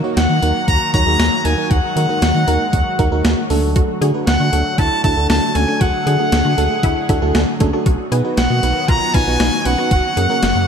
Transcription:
Already playing: D#3 F#3 A#3 F#4
0.04 A#3 D#4 F#4 C#5
0.17 D#2 F#5, snare, closed hi-hat
0.30 D#3
0.42 D#2 A#3 D#4 F#4 A#4, closed hi-hat
0.68 D#2 A#5, kick, closed hi-hat
0.94 D#2 A#3 D#4 F#4 C#5 A#5, kick, closed hi-hat
1.07 D#2 A#3 D#4 F#4 G#4
1.19 D#2, snare, closed hi-hat
1.45 D#2 G#3 A#3 D#4 F#4 A#4 G#5, closed hi-hat
1.58 A#3 D#4 F#4 A#4
1.71 D#2 F#5, kick, closed hi-hat
1.96 D#3 A#3 D#4 F#4 A#4, closed hi-hat
2.09 A#3 D#4 F#4 A#4
2.22 D#2, snare, closed hi-hat
2.35 D#3
2.48 D#2 A#3 D#4 F#4 A#4, closed hi-hat
2.73 D#2, kick, closed hi-hat
2.99 D#2 A#3 D#4 F#4 A#4, kick, closed hi-hat
3.12 D#2 A#3 D#4 F#4 A#4
3.25 D#2, snare, closed hi-hat
3.50 D2 D3 A3 D4 F#4 A4, open hi-hat
3.76 F#4, kick, closed hi-hat
4.01 D3 A3 D4 F#4 G#4, closed hi-hat
4.14 A3 D4 F#4 B4
4.27 D2 F#5, snare, closed hi-hat
4.40 D3 F#4
4.53 D2 A3 D4 F#4 A4, closed hi-hat
4.78 D2 E4 A5, kick, closed hi-hat
5.04 D2 A3 D4 E4 F#4 A4 A5, kick, closed hi-hat
5.17 D2 A3 D4 F#4 A4
5.30 D2 D4 A5, snare, closed hi-hat
5.55 D2 A3 C#4 D4 F#4 G#4 A4 G#5, closed hi-hat
5.68 A3 D4 F#4 A4
5.81 D2 F#4 F#5, kick, closed hi-hat
6.07 D3 A3 D4 F#4 G#4, closed hi-hat
6.19 A3 D4 F#4 A4
6.32 D2, snare, closed hi-hat
6.45 D3 F#4
6.58 D2 A3 D4 F#4 A4, closed hi-hat
6.83 D2 E4, kick, closed hi-hat
7.09 D2 A3 D4 E4 F#4 A4, kick, closed hi-hat
7.22 D2 A3 D4 F#4 A4
7.35 D2 D4, snare, closed hi-hat
7.60 D2 A3 C#4 D4 F#4 A4, kick, closed hi-hat
7.73 A3 D4 F#4 A4
7.86 B1 D#3 F#3 B3 F#4, kick, closed hi-hat
8.12 B2 B3 D#4 F#4 G#4 B4, closed hi-hat
8.25 B3 D#4 F#4 B4
8.37 B1 F#5, snare, closed hi-hat
8.50 B2 F#4
8.63 B1 B3 D#4 F#4 B4, closed hi-hat
8.88 B1 F4 A#5, kick, closed hi-hat
9.14 B1 B3 D#4 F4 F#4 B4 G#5, kick, closed hi-hat
9.27 B1 B3 D#4 F#4 B4
9.40 B1 D#4, snare, closed hi-hat
9.65 B1 B3 C#4 D#4 F#4 B4 F#5, closed hi-hat
9.78 B3 D#4 F#4 B4
9.91 F#1 C#3 A#3 F#4, kick, closed hi-hat
10.17 F#2 A#3 C#4 F#4 G#4 A#4, closed hi-hat
10.30 A#3 C#4 F#4 A#4
10.43 F#1, snare, closed hi-hat
10.55 F#2 F#4

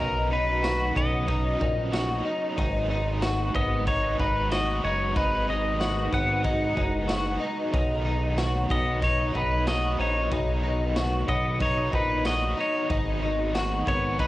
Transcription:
Already playing: B2 F#3 D#4
0.00 B1 D#3 F#3 B3 C#4 D#4 A#4
0.31 D#4 B4
0.63 F#4, snare, ride, tambourine
0.95 B1 B3 D#5, kick
1.27 F#3 B3 D#4, kick, ride
1.32 A#4
1.60 A#1 D#4, kick
1.91 F#3 B3 D#4 F#4, snare, ride, tambourine
1.96 A#4
2.25 D#4
2.54 G#1 G#2 D#3 F#3 G#3 D#4 F#4 B4, kick
2.58 B3 D#4 G#4, ride
2.90 D#4
3.22 F#4, snare, ride, tambourine
3.55 G#1 B3 D#5, kick
3.85 F#3 B3 D#4 C#5, kick, ride
3.90 G#4
4.19 G#1 D#4 B4, kick
4.50 F#3 B3 D#4 F#4 D#5, snare, ride, tambourine
4.55 G#4
4.84 F#1 D#4 C#5
5.13 G#1 G#2 D#3 D#4, kick, ride
5.17 F#3 B3 D#4 B4
5.21 G#4
5.48 D#4 D#5
5.80 F#4, snare, ride, tambourine
6.12 G#1 B3 F#5, kick
6.43 F#3 B3 D#4, kick, ride
6.47 D#4 G#4
6.76 F#1 D#4, kick
7.07 F#3 B3 D#4 F#4, snare, ride, tambourine
7.12 G#4
7.40 D#4
7.73 B1 B2 D#3 F#3 B3 D#4, kick, ride
7.77 A#4
8.05 D#4
8.38 F#4, snare, ride, tambourine
8.69 B1 B3 D#4 A#4 D#5, kick
8.75 F#3
9.01 F#3 B3 D#4 C#5, kick, ride
9.34 B1 D#4 B4, kick
9.66 F#3 B3 D#4 F#4 D#5, snare, ride, tambourine
9.71 A#4
9.99 A#1 D#4 C#5
10.29 B1 B2 D#3 F#3 D#4, kick, ride
10.34 B3 D#4 A#4
10.63 D#4
10.96 F#4, snare, ride, tambourine
11.28 B1 B3 D#5, kick
11.59 F#3 B3 D#4 C#5, kick, ride
11.92 A#1 D#4 B4, kick
12.24 F#3 B3 D#4 F#4 D#5, snare, ride, tambourine
12.29 A#4
12.57 D#4 C#5
12.89 G#1 G#2 D#3 F#3 G#3 B3 D#4 F#4 G#4, kick, ride
13.22 D#4
13.54 F#4, snare, ride, tambourine
13.86 G#1 B3 D#4 G#4 C#5, kick
13.91 F#3
14.17 F#3 B3 D#4 B4, kick, ride
14.23 G#4

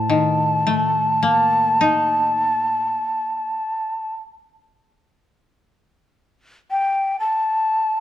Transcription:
Already playing: A2 A5
0.10 D#3
0.67 A3
1.23 A#3
1.81 D#4
6.71 G5
7.20 A5

